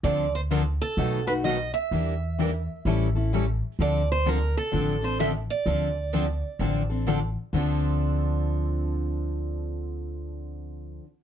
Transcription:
X:1
M:4/4
L:1/8
Q:"Swing" 1/4=128
K:Dm
V:1 name="Steel-string acoustic guitar"
d c B A2 =B ^d e- | e4- e z3 | d c B A2 c e d- | d4- d z3 |
z8 | z8 |]
V:2 name="Steel-string acoustic guitar"
[D,F,CDA] z [D,F,CDA] z [=B,,^F,A,^D^F] [A,DF] [B,,F,A,DF] z | [E,B,DG] z [E,B,DG] z [E,G,^CEA] [CEA] [E,G,CEA] z | [D,F,CDA] z [D,F,CDA] z [D,F,CDA] [CDA] [D,F,CDA] z | [D,F,CDA] z [D,F,CDA] z [D,F,CDA] [CDA] [D,F,CDA] z |
[D,F,CDA]8- | [D,F,CDA]8 |]
V:3 name="Steel-string acoustic guitar"
[D,F,CDA] z [D,F,CDA] z [=B,,^D,^F,=B,^DA] z [B,,D,F,B,DA] z | [E,G,DEB] z [E,G,DEB] z [E,G,^CEA] z [E,G,CEA] z | [D,F,CDA] z [D,F,CDA] z [D,F,CDA] z [D,F,CDA] z | [D,F,CDA] z [D,F,CDA] z [D,F,CDA] z [D,F,CDA] z |
[D,F,CDA]8- | [D,F,CDA]8 |]
V:4 name="Upright bass" clef=bass
D,,4 =B,,,4 | E,,4 A,,,4 | D,,4 A,,,4 | D,,4 A,,,4 |
D,,8- | D,,8 |]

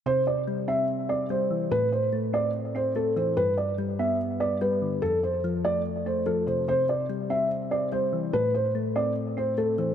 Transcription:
X:1
M:4/4
L:1/8
Q:1/4=145
K:C
V:1 name="Felt piano"
c d z e z d c2 | B c z d z c A c | B d z e z d B2 | A c z d z c A c |
c d z e z d c2 | B c z d z c A c |]
V:2 name="Synth keys" clef=bass
C,2 G, C2 C G, E, | A,,2 A, C2 C A, E, | G,,2 G, B,2 B, G, D, | F,,2 F, A,2 A, F, C, |
C,2 G, C2 C G, E, | A,,2 A, C2 C A, E, |]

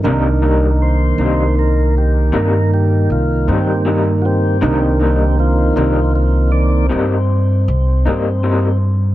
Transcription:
X:1
M:12/8
L:1/8
Q:3/8=52
K:Cm
V:1 name="Tonewheel organ"
z2 c2 B G B G F [CG] z [C^FG] | [CG] [CG] [CF] [CF] [CF] C6 z |]
V:2 name="Tonewheel organ"
[E,B,]12 | [E,B,]4- [E,B,] [E,B,d] z6 |]
V:3 name="Grand piano"
[DEB]12 | [DEB]12 |]
V:4 name="Clean electric guitar"
[C,G,B,E] [G,B,E] z [G,B,E] z2 [C,G,B,E] z2 [G,B,E] [C,G,B,E] z | [C,G,B,E] [G,B,E] z [G,B,E] z2 [C,G,B,E] z2 [G,B,E] [C,G,B,E] z |]
V:5 name="Upright bass" clef=bass
C,,3 C,,3 G,,2 C,, G,,3 | C,,3 C,,3 G,,2 C,, G,,3 |]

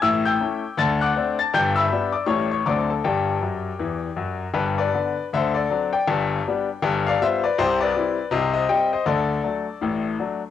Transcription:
X:1
M:4/4
L:1/8
Q:"Swing" 1/4=160
K:G
V:1 name="Grand piano"
[ee'] [ge'g']3 [aa'] [fd'f']2 [aa'] | [gg'] [ebe']2 [dd'] [^c^c'] [cc'] [dd'] [Aa] | [Gdg]6- [Gdg] z | [GB] [Bd]3 [ce] [Ad]2 [dg]- |
[dg]4- [dg] [d=f] [ce] [Bd] | [Gc] [Bd]3 [c_e] [ce] [eg] [ce] | [Ad]6 z2 |]
V:2 name="Grand piano" clef=bass
[A,,,A,,]2 [A,^CE]2 [D,,D,]2 [A,=CD]2 | [G,,,G,,]2 [G,B,D]2 [A,,,A,,G,A,^C]2 [D,,D,F,A,=C]2 | [G,,,G,,]2 [F,,F,]2 [E,,E,]2 [F,,F,]2 | [G,,,G,,]2 [D,B,D]2 [D,,D,]2 [F,CD]2 |
[G,,,G,,]2 [G,B,D]2 [G,,,G,,]2 [G,B,=F]2 | [C,,C,]2 [G,CE]2 [C,,C,]2 [G,CG]2 | [D,,D,]2 [F,A,D]2 [A,,,A,,]2 [F,A,D]2 |]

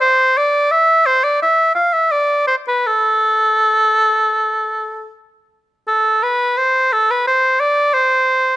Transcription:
X:1
M:4/4
L:1/16
Q:1/4=86
K:Am
V:1 name="Oboe"
c2 d2 e2 c d e2 f e d2 c B | A12 z4 | A2 B2 c2 A B c2 d2 c4 |]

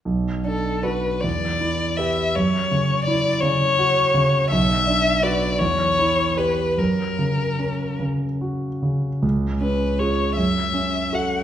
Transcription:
X:1
M:6/8
L:1/8
Q:3/8=53
K:Bm
V:1 name="Violin"
z A B d2 e | c2 d c3 | e2 d c2 B | ^A3 z3 |
z B c e2 f |]
V:2 name="Grand piano"
B,,, D [FB] E,, E [GB] | F,, C, E C, F C, | B,,, D [FB] E,, E [GB] | F,, C, C C, F C, |
C,, C [^E^G] F,, C [FA] |]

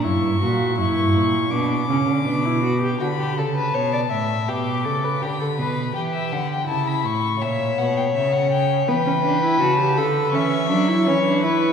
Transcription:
X:1
M:4/4
L:1/16
Q:1/4=82
K:Dmix
V:1 name="Violin"
^c'4 c'4 d'8 | b2 a6 d'4 b4 | g e f g a b ^c'2 e2 f g e f g2 | g4 a2 b2 ^c'8 |]
V:2 name="Violin"
z16 | F G A B ^c d e2 G2 A B G A B2 | G4 E4 ^c8 | B8 e4 ^c2 B2 |]
V:3 name="Viola"
E2 F2 E4 D2 ^C2 D E F G | z16 | z16 | B, ^C D E F G A2 C2 D E C D E2 |]
V:4 name="Cello" clef=bass
F,, G,, ^A,,2 F,, G,, A,,2 B,,2 ^C, D, B,,4 | D,2 ^C,2 B,,2 A,,2 B,,2 C,2 D,2 B,,2 | E,2 D,2 ^C,2 A,,2 ^A,,2 B,,2 C,4 | E,4 ^C,2 D,2 E,2 F,2 E,4 |]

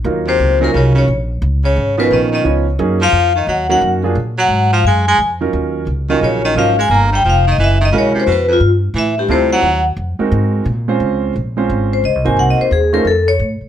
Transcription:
X:1
M:4/4
L:1/8
Q:"Swing" 1/4=175
K:Ebdor
V:1 name="Vibraphone"
z c2 B d d z2 | z d2 _c e e z2 | z f2 e g g z2 | z g2 f a a z2 |
z3 e d e f a | b =g f e _f e d c | _c F z2 =e =G =c _g- | g z6 z |
z4 z c e a | (3g e c A B =A d z2 |]
V:2 name="Grand piano"
[G,B,EFB]3 [G,DEFB]3 z2 | z3 [F,_CDEB]3 [F,CDEd] z | [G,B,DEA] z4 [G,B,DEG]2 [G,B,=DFA] | z6 z [G,DEFB]- |
[G,DEFB]2 z [G,DEFB]3 [G,DEFB] z | z6 [A,D_FGB]2 | z6 [=G,C=EF=A]2 | z3 [A,CEGB]3 z [A,CDFc]- |
[A,CDFc]2 z [A,CDFc]3 z [B,CEGc]- | [B,CEGc]2 z [=A,DEFc] z4 |]
V:3 name="Baritone saxophone" clef=bass
z C,2 B,, D, D, z2 | z D,2 _C, E, E, z2 | z F,2 E, G, G, z2 | z G,2 F, A, A, z2 |
z3 E, D, E, F, A, | B, =G, F, E, _F, E, D, C, | _C, F,, z2 =E, =G,, =C, _G,- | G, z6 z |
z8 | z8 |]
V:4 name="Upright bass" clef=bass
E,,2 D,,2 C,,2 B,,,2 | D,,2 A,,,2 B,,,2 D,,2 | G,,2 F,,2 E,,2 G,,2 | B,,2 A,,2 G,,2 F,,2 |
E,,2 D,,2 B,,,2 A,,,2 | =G,,,2 F,,,2 _G,,,2 B,,, z | F,,2 =G,,2 =A,,2 =D,,2 | E,,2 F,, z A,,2 B,,2 |
D,,2 B,,,2 A,,,2 (3D,, C,, A,,, | C,, z E,,2 F,,2 =A,, z |]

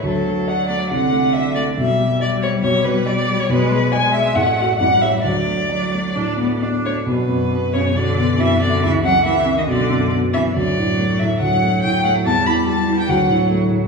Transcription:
X:1
M:4/4
L:1/16
Q:1/4=138
K:D
V:1 name="Violin"
A4 f2 d2 f4 e2 d2 | e4 d2 c2 c2 B2 d3 c | B4 ^g2 e2 f4 f2 e2 | d12 z2 c2 |
[K:Bm] B6 c2 d4 e2 d2 | e2 f2 e3 ^d =d4 z2 e2 | d6 e2 f4 g2 f2 | a2 b2 a3 g f4 z4 |]
V:2 name="Grand piano" clef=bass
D,,2 A,2 d2 A,2 =C,,2 A,2 d2 A,2 | B,,,2 G,2 d2 G,2 B,,,2 B,,2 d2 G,2 | B,,,2 ^G,2 d2 G,2 A,,,2 [Fd]2 A,,,2 [=Gc]2 | D,,2 A,2 d2 A,2 A,,2 A,2 d2 A,2 |
[K:Bm] B,,,2 F,,2 B,2 F,,2 B,,,2 B,2 F,,2 B,2 | C,,2 C,2 ^A,2 C,2 B,,,2 F,,2 B,2 F,,2 | D,,2 A,,2 A,2 A,,2 D,,2 A,2 A,,2 A,2 | E,,2 E,2 G,2 E,2 D,,2 A,,2 A,2 A,,2 |]
V:3 name="Cello" clef=bass
F,8 D,8 | G,16 | ^G,4 G,4 A,4 =G,4 | F,4 F,4 D2 B,2 D4 |
[K:Bm] B,,6 C,2 D,4 E,2 D,2 | E,2 F,2 E,3 ^D, =D,4 z2 E,2 | F,8 F,8 | G,8 F,8 |]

